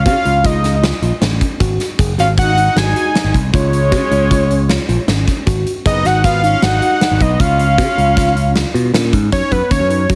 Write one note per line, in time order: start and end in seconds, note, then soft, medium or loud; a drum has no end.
0.05 0.14 C#3 medium
0.05 0.47 C#4 medium
0.05 0.18 F#4 medium
0.05 0.47 F5 loud
0.05 kick loud
0.05 closed hi-hat medium
0.25 0.91 C#2 medium
0.25 0.37 F4 medium
0.25 closed hi-hat medium
0.44 0.83 G#3 medium
0.44 0.56 F4 medium
0.44 0.84 D#5 medium
0.44 kick loud
0.44 closed hi-hat medium
0.64 0.76 C#4 medium
0.64 snare soft
0.64 closed hi-hat medium
0.83 0.95 F4 medium
0.83 snare loud
0.83 closed hi-hat medium
1.02 1.10 A#1 medium
1.02 1.15 F4 medium
1.02 closed hi-hat medium
1.21 1.38 A1 medium
1.21 1.47 C#4 medium
1.21 snare loud
1.21 closed hi-hat medium
1.41 kick medium
1.41 closed hi-hat medium
1.60 1.77 G#1 medium
1.60 1.85 F#4 medium
1.60 kick medium
1.60 closed hi-hat medium
1.80 snare soft
1.80 closed hi-hat medium
1.99 2.15 F#1 medium
1.99 2.11 G#4 medium
1.99 kick loud
1.99 closed hi-hat medium
2.18 2.68 G#1 medium
2.18 2.28 C#4 medium
2.18 2.31 F#4 medium
2.18 2.28 F5 medium
2.18 snare soft
2.18 closed hi-hat medium
2.37 2.78 D#4 medium
2.37 2.50 F#4 medium
2.37 2.79 F#5 loud
2.37 kick loud
2.37 closed hi-hat medium
2.57 2.69 D#4 medium
2.57 closed hi-hat medium
2.76 2.93 G#1 medium
2.76 3.35 D#4 medium
2.76 2.89 F#4 medium
2.76 3.35 G#5 loud
2.76 snare loud
2.76 closed hi-hat medium
2.96 3.08 F#4 medium
2.96 closed hi-hat medium
3.15 3.40 D#4 medium
3.15 snare loud
3.15 closed hi-hat medium
3.24 3.33 G#1 medium
3.34 3.51 C2 medium
3.34 kick medium
3.34 closed hi-hat medium
3.53 3.93 C#2 medium
3.53 5.04 G#3 medium
3.53 3.78 F4 medium
3.53 5.05 C#5 loud
3.53 kick loud
3.53 closed hi-hat medium
3.73 closed hi-hat medium
3.92 4.00 C#3 medium
3.92 4.05 F#4 medium
3.92 kick loud
3.92 snare soft
3.92 closed hi-hat medium
4.11 4.77 C#2 medium
4.11 4.24 F4 medium
4.11 closed hi-hat medium
4.30 4.43 F4 medium
4.30 kick loud
4.30 closed hi-hat medium
4.50 4.62 C#4 medium
4.50 closed hi-hat medium
4.69 4.81 F4 medium
4.69 snare loud
4.69 closed hi-hat medium
4.89 4.97 A#1 medium
4.89 5.01 F4 medium
4.89 closed hi-hat medium
5.08 5.24 G#1 medium
5.08 5.33 C#4 medium
5.08 snare loud
5.08 closed hi-hat medium
5.27 kick medium
5.27 snare soft
5.27 closed hi-hat medium
5.46 5.63 G#1 medium
5.46 5.71 F#4 medium
5.46 kick loud
5.46 closed hi-hat medium
5.66 closed hi-hat medium
5.86 6.02 F#1 loud
5.86 6.07 B3 medium
5.86 5.98 G#4 medium
5.86 6.07 D#5 loud
5.86 kick loud
5.86 closed hi-hat medium
6.05 6.54 G#1 medium
6.05 6.24 D#4 medium
6.05 6.17 F#4 medium
6.05 6.24 F#5 loud
6.05 snare soft
6.05 closed hi-hat medium
6.24 6.42 B3 medium
6.24 6.36 F#4 medium
6.24 6.42 F5 loud
6.24 kick loud
6.24 snare soft
6.24 closed hi-hat medium
6.43 6.62 C#4 medium
6.43 6.55 D#4 medium
6.43 6.61 F5 loud
6.43 closed hi-hat medium
6.62 6.79 G#1 medium
6.62 7.22 D#4 medium
6.62 6.75 F#4 medium
6.62 7.23 F#5 loud
6.62 snare loud
6.62 closed hi-hat medium
6.82 6.94 F#4 medium
6.82 closed hi-hat medium
7.01 7.26 D#4 medium
7.01 snare loud
7.01 closed hi-hat medium
7.11 7.19 G#1 medium
7.20 7.37 B1 medium
7.20 7.42 B3 medium
7.20 7.41 D#5 medium
7.20 kick medium
7.20 closed hi-hat medium
7.39 7.80 C#2 medium
7.39 8.95 C#4 medium
7.39 7.64 F4 medium
7.39 8.94 F5 loud
7.39 kick loud
7.39 closed hi-hat medium
7.59 closed hi-hat medium
7.78 7.86 C#3 medium
7.78 7.91 F#4 medium
7.78 kick loud
7.78 snare soft
7.78 closed hi-hat medium
7.97 8.63 C#2 medium
7.97 8.10 F4 medium
7.97 closed hi-hat medium
8.17 8.29 F4 medium
8.17 kick loud
8.17 snare soft
8.17 closed hi-hat medium
8.36 8.48 C#4 medium
8.36 closed hi-hat medium
8.55 8.68 F4 medium
8.55 snare loud
8.55 closed hi-hat medium
8.74 8.92 B2 medium
8.74 8.87 F4 medium
8.74 closed hi-hat medium
8.93 9.11 A#2 medium
8.93 9.18 C#4 medium
8.93 snare loud
8.93 closed hi-hat medium
9.13 9.31 G#2 medium
9.13 kick medium
9.13 closed hi-hat medium
9.32 9.41 F#2 medium
9.32 9.57 D#4 medium
9.32 9.53 C#5 loud
9.32 kick loud
9.32 closed hi-hat medium
9.52 9.60 F#2 medium
9.52 9.71 B4 loud
9.52 kick medium
9.52 closed hi-hat medium
9.70 9.79 D#2 medium
9.70 9.83 C#4 medium
9.70 10.07 C#5 medium
9.70 kick loud
9.70 closed hi-hat medium
9.80 10.05 F#2 medium
9.90 10.02 D#4 medium
9.90 closed hi-hat medium
10.09 10.15 F#3 medium
10.09 10.15 C#4 medium
10.09 kick loud
10.09 closed hi-hat medium